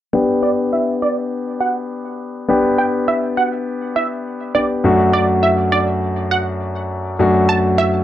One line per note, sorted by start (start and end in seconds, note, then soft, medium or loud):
0.13 2.45 B3 medium
0.13 2.45 D4 medium
0.13 2.45 G4 medium
0.43 0.54 D5 medium
0.73 0.94 E5 medium
1.02 1.13 D5 medium
1.60 1.72 F#5 medium
2.48 4.51 B3 medium
2.48 4.51 D4 medium
2.48 4.51 G4 medium
2.78 2.90 G5 medium
3.08 3.29 E5 medium
3.37 3.49 F#5 medium
3.96 4.07 E5 medium
4.55 4.84 B3 soft
4.55 4.83 D4 soft
4.55 4.84 G4 medium
4.55 4.66 D5 medium
4.84 7.15 F#2 medium
4.84 7.16 A3 medium
4.84 7.16 D4 medium
4.84 7.16 F#4 medium
5.13 5.25 D5 medium
5.43 5.64 E5 medium
5.72 5.84 D5 medium
6.31 6.43 F#5 medium
7.19 8.04 F#2 medium
7.19 8.04 A3 medium
7.19 8.04 D4 medium
7.19 8.04 F#4 medium
7.49 7.60 A5 medium
7.78 8.00 E5 medium